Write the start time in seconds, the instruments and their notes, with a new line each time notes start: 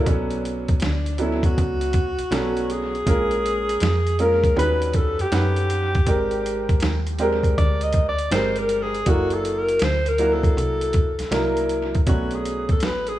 0.06 fm bass B1, upright piano F#3 B3 C#4 D4 A4, kick, closed hi-hat
0.30 closed hi-hat
0.45 closed hi-hat
0.68 kick, closed hi-hat
0.80 fm bass D2, alto saxophone D4, snare, closed hi-hat
1.06 closed hi-hat
1.18 upright piano F#3 B3 C#4 D4 A4, alto saxophone E4, closed hi-hat
1.43 alto saxophone F#4, kick, closed hi-hat
1.58 fm bass C#2, kick, closed hi-hat
1.81 closed hi-hat
1.93 kick, closed hi-hat
2.19 fm bass B1, closed hi-hat
2.31 fm bass B1, upright piano F#3 B3 C#4 D4 A4, snare, closed hi-hat
2.57 closed hi-hat
2.70 alto saxophone G#4, closed hi-hat
2.95 closed hi-hat
3.06 fm bass A#1, upright piano G#3 A#3 C#4 F4 A#4, kick, closed hi-hat
3.31 closed hi-hat
3.46 closed hi-hat
3.69 closed hi-hat
3.80 fm bass F2, snare, closed hi-hat
4.07 closed hi-hat
4.19 upright piano G#3 A#3 C#4 F4 A#4, alto saxophone A#4, closed hi-hat
4.44 kick, closed hi-hat
4.56 fm bass D#2, upright piano G3 C#4 D#4 F#4 B4, alto saxophone B4, closed hi-hat
4.82 closed hi-hat
4.93 alto saxophone A4, kick, closed hi-hat
5.19 fm bass F#2, alto saxophone G4, closed hi-hat
5.31 fm bass F#2, upright piano C#4 D#4 G4 B4 F#5, snare, closed hi-hat
5.56 closed hi-hat
5.70 closed hi-hat
5.95 kick, closed hi-hat
6.06 fm bass G#1, upright piano G#3 C4 D4 G4 A#4, kick, closed hi-hat
6.31 closed hi-hat
6.46 closed hi-hat
6.69 kick, closed hi-hat
6.80 fm bass D#2, snare, closed hi-hat
7.07 closed hi-hat
7.19 upright piano G#3 C4 D4 G4 A#4, closed hi-hat
7.43 kick, closed hi-hat
7.58 fm bass D2, alto saxophone D5, kick, closed hi-hat
7.81 alto saxophone D#5, closed hi-hat
7.93 kick, closed hi-hat
8.09 alto saxophone D5
8.19 closed hi-hat
8.31 fm bass G1, upright piano G#3 C4 D4 G4 A#4, alto saxophone C5, snare, closed hi-hat
8.56 alto saxophone A#4, closed hi-hat
8.69 closed hi-hat
8.83 alto saxophone G#4
8.95 closed hi-hat
9.06 fm bass F#1, upright piano F#3 A#3 D4 E4 A4, alto saxophone F#4, kick, closed hi-hat
9.30 alto saxophone A4, closed hi-hat
9.45 closed hi-hat
9.59 alto saxophone A#4
9.69 closed hi-hat
9.79 fm bass D2, snare, closed hi-hat
9.84 alto saxophone C5
10.06 alto saxophone A#4, closed hi-hat
10.18 upright piano F#3 A#3 D4 E4 F#4, closed hi-hat
10.33 alto saxophone A4
10.43 kick, closed hi-hat
10.57 fm bass C2, closed hi-hat
10.81 closed hi-hat
10.93 kick, closed hi-hat
11.19 fm bass C2, snare, closed hi-hat
11.31 fm bass C2, upright piano F#3 A#3 D4 E4 A#4, snare, closed hi-hat
11.57 closed hi-hat
11.69 closed hi-hat
11.95 kick, closed hi-hat
12.06 fm bass B1, upright piano F#3 A3 B3 C#4 D4, alto saxophone F#4, kick, closed hi-hat
12.31 alto saxophone G#4, closed hi-hat
12.45 closed hi-hat
12.69 alto saxophone A4, kick, closed hi-hat
12.80 fm bass A1, snare, closed hi-hat
12.84 alto saxophone B4
13.07 alto saxophone G#4, closed hi-hat